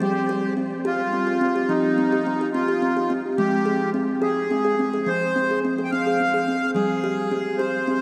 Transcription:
0.00 1.66 F3 medium
0.00 0.29 G3 medium
0.00 0.54 G4 medium
0.29 0.57 G4 medium
0.57 0.85 C4 medium
0.85 1.72 F4 medium
0.85 1.13 G4 medium
1.13 1.27 C4 medium
1.27 1.41 G4 medium
1.41 1.55 C4 medium
1.56 1.84 G4 medium
1.69 3.35 F3 medium
1.69 2.49 D#4 medium
1.98 2.12 C4 medium
2.12 2.26 G4 medium
2.27 2.40 C4 medium
2.41 2.55 G4 medium
2.53 2.68 C4 medium
2.53 3.13 F4 medium
2.68 2.82 G4 medium
2.82 2.96 C4 medium
2.97 3.10 G4 medium
3.10 3.38 C4 medium
3.38 5.03 F3 medium
3.38 3.66 G#3 medium
3.38 3.90 G4 medium
3.66 3.94 G#4 medium
3.94 4.22 C4 medium
4.22 4.50 G#4 medium
4.22 5.09 G#4 medium
4.51 4.65 C4 medium
4.65 4.79 G#4 medium
4.79 4.93 C4 medium
4.94 5.21 G#4 medium
5.06 6.72 F3 medium
5.06 5.59 C5 loud
5.36 5.49 C4 medium
5.51 5.64 G#4 medium
5.65 5.78 C4 medium
5.78 5.92 G#4 medium
5.84 5.91 G5 medium
5.91 6.06 C4 medium
5.91 6.71 F5 loud
6.07 6.20 G#4 medium
6.20 6.34 C4 medium
6.34 6.48 G#4 medium
6.48 6.76 C4 medium
6.74 8.02 F3 medium
6.74 7.04 G3 medium
6.74 7.62 G#4 medium
7.04 7.32 G4 medium
7.31 7.59 C4 medium
7.58 7.88 G4 medium
7.58 8.02 C5 medium
7.88 8.02 C4 medium

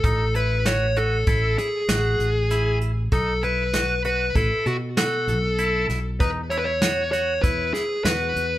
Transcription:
0.04 1.23 A1 medium
0.04 0.24 D#4 medium
0.04 0.33 A4 medium
0.04 kick loud
0.04 closed hi-hat medium
0.35 0.55 E4 medium
0.35 0.67 B4 medium
0.35 closed hi-hat medium
0.65 0.86 F#4 medium
0.65 0.98 C#5 medium
0.65 snare medium
0.65 closed hi-hat medium
0.96 1.17 F#4 medium
0.96 1.58 A4 medium
0.96 closed hi-hat medium
1.27 1.56 A1 medium
1.27 1.67 E4 medium
1.27 kick medium
1.27 closed hi-hat medium
1.58 2.78 G#4 medium
1.58 closed hi-hat medium
1.89 2.17 A1 medium
1.89 2.29 F#4 medium
1.89 snare medium
1.89 closed hi-hat medium
2.19 3.08 A1 medium
2.19 closed hi-hat medium
2.50 2.91 E4 medium
2.50 snare soft
2.50 closed hi-hat medium
2.81 closed hi-hat medium
3.12 4.31 B1 medium
3.12 3.33 D#4 medium
3.12 3.44 A4 medium
3.12 kick medium
3.12 closed hi-hat medium
3.43 3.63 E4 medium
3.43 4.01 B4 medium
3.43 closed hi-hat medium
3.74 3.94 F#4 medium
3.74 snare medium
3.74 closed hi-hat medium
4.05 4.25 F#4 medium
4.05 4.34 B4 medium
4.05 closed hi-hat medium
4.35 4.50 A1 medium
4.35 4.76 E4 medium
4.35 4.65 A4 medium
4.35 kick medium
4.35 closed hi-hat medium
4.66 5.29 B2 medium
4.66 4.75 F#4 medium
4.66 closed hi-hat soft
4.97 5.38 F#4 medium
4.97 5.86 A4 medium
4.97 snare medium
4.97 closed hi-hat medium
5.27 5.85 B1 medium
5.27 closed hi-hat medium
5.58 5.99 E4 medium
5.58 closed hi-hat medium
5.89 6.18 B1 medium
5.89 snare soft
5.89 closed hi-hat medium
6.20 7.40 E2 medium
6.20 6.40 D#4 medium
6.20 6.28 B4 medium
6.20 kick medium
6.20 closed hi-hat medium
6.50 6.71 E4 medium
6.50 6.57 C#5 medium
6.50 closed hi-hat medium
6.58 6.65 B4 medium
6.64 7.09 C#5 medium
6.82 7.02 F#4 medium
6.82 snare medium
6.82 closed hi-hat medium
7.12 7.33 F#4 medium
7.12 7.41 C#5 medium
7.12 snare soft
7.12 closed hi-hat medium
7.42 7.72 E2 medium
7.42 7.84 E4 medium
7.42 7.73 B4 medium
7.42 kick medium
7.42 snare soft
7.42 closed hi-hat medium
7.74 8.04 G#4 medium
7.74 snare soft
7.74 closed hi-hat medium
8.04 8.33 E2 medium
8.04 8.46 F#4 medium
8.04 8.58 B4 medium
8.04 snare medium
8.04 closed hi-hat medium
8.36 8.58 E2 medium
8.36 closed hi-hat medium

